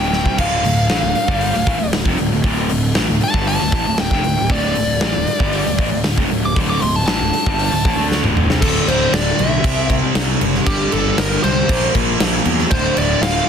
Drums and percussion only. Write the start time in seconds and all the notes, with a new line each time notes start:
0.13 snare
0.26 kick
0.38 kick, crash
0.64 snare, open hi-hat
0.89 snare, open hi-hat
1.15 open hi-hat
1.28 kick
1.41 open hi-hat
1.54 snare
1.67 kick, open hi-hat
1.93 snare, open hi-hat
2.05 kick
2.18 open hi-hat
2.44 kick, open hi-hat
2.69 open hi-hat
2.95 snare, open hi-hat
3.21 open hi-hat
3.34 kick
3.47 open hi-hat
3.60 snare
3.72 kick, open hi-hat
3.98 snare, open hi-hat
4.11 kick
4.24 open hi-hat
4.50 kick, open hi-hat
4.75 open hi-hat
5.01 snare, open hi-hat
5.27 open hi-hat
5.40 kick
5.53 open hi-hat
5.66 snare
5.79 kick, open hi-hat
6.04 snare, open hi-hat
6.18 kick
6.31 open hi-hat
6.56 kick, open hi-hat
6.82 open hi-hat
7.07 snare, open hi-hat
7.34 open hi-hat
7.46 kick
7.59 open hi-hat
7.73 snare
7.85 kick, open hi-hat
8.12 snare
8.24 mid tom
8.37 mid tom
8.50 snare
8.62 kick, crash
8.88 crash
9.14 snare, crash
9.39 crash
9.64 kick, crash
9.90 kick, crash
10.15 snare, crash
10.41 crash
10.54 snare
10.67 kick, crash
10.92 crash
11.18 snare, crash
11.44 crash
11.69 kick, crash
11.95 kick, crash
12.20 snare, crash
12.45 crash
12.59 snare
12.71 kick, crash
12.97 crash
13.23 snare, crash